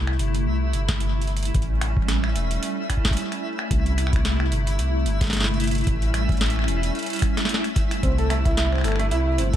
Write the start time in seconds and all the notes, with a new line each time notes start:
Already playing: C2 C3 A3 E4
0.07 finger snap
0.19 G1, closed hi-hat
0.35 closed hi-hat
0.46 C2
0.73 G1, closed hi-hat
0.89 kick, snare, closed hi-hat
1.00 closed hi-hat
1.22 closed hi-hat
1.27 closed hi-hat
1.37 closed hi-hat
1.43 closed hi-hat
1.45 closed hi-hat
1.54 A1 G3 A3 C#4, kick, closed hi-hat
1.62 closed hi-hat
1.81 finger snap, closed hi-hat
1.97 kick
2.08 snare, closed hi-hat
2.24 finger snap
2.36 E1, closed hi-hat
2.51 closed hi-hat
2.63 closed hi-hat
2.90 finger snap, kick, closed hi-hat
2.97 kick
3.05 kick, snare, closed hi-hat
3.08 kick, closed hi-hat
3.13 closed hi-hat
3.17 closed hi-hat
3.32 finger snap, closed hi-hat
3.59 finger snap
3.71 C2 C3 A3 E4, kick, closed hi-hat
3.86 closed hi-hat
3.98 finger snap, closed hi-hat
4.07 finger snap
4.13 finger snap, kick, closed hi-hat
4.25 snare, closed hi-hat
4.40 finger snap
4.52 G1, closed hi-hat
4.67 closed hi-hat
4.79 C2, closed hi-hat
5.06 G1, closed hi-hat
5.21 kick, snare, closed hi-hat
5.24 snare
5.27 snare
5.30 snare
5.33 snare, closed hi-hat
5.37 snare
5.40 snare
5.44 snare, closed hi-hat
5.54 closed hi-hat
5.60 closed hi-hat
5.64 closed hi-hat
5.67 closed hi-hat
5.71 closed hi-hat
5.75 closed hi-hat
5.78 closed hi-hat
5.81 closed hi-hat
5.84 closed hi-hat
5.87 A1 G3 C#4, kick, closed hi-hat
6.02 closed hi-hat
6.14 finger snap, closed hi-hat
6.29 kick, closed hi-hat
6.32 closed hi-hat
6.37 snare, closed hi-hat
6.41 closed hi-hat
6.46 closed hi-hat
6.50 closed hi-hat
6.56 finger snap
6.59 finger snap
6.64 finger snap, closed hi-hat
6.68 E1
6.83 closed hi-hat
6.95 closed hi-hat
6.99 closed hi-hat
7.03 closed hi-hat
7.06 closed hi-hat
7.10 closed hi-hat
7.13 closed hi-hat
7.16 closed hi-hat
7.19 finger snap, kick, closed hi-hat
7.22 closed hi-hat
7.37 snare, closed hi-hat
7.45 snare, closed hi-hat
7.54 snare
7.64 finger snap, closed hi-hat
7.76 kick, closed hi-hat
7.91 finger snap, closed hi-hat
8.03 C2 C3 A3 C4 E4, kick, closed hi-hat
8.18 A4, closed hi-hat
8.30 A3, finger snap, closed hi-hat
8.45 E4, kick, closed hi-hat
8.57 E4, snare, closed hi-hat
8.72 C4, finger snap
8.75 finger snap
8.78 finger snap
8.81 G1 A4, finger snap
8.84 finger snap, closed hi-hat
8.88 finger snap
8.92 finger snap
8.96 A3, finger snap, closed hi-hat
9.11 C2 E4, closed hi-hat
9.26 E4
9.38 G1 C4, closed hi-hat
9.54 A4, kick, closed hi-hat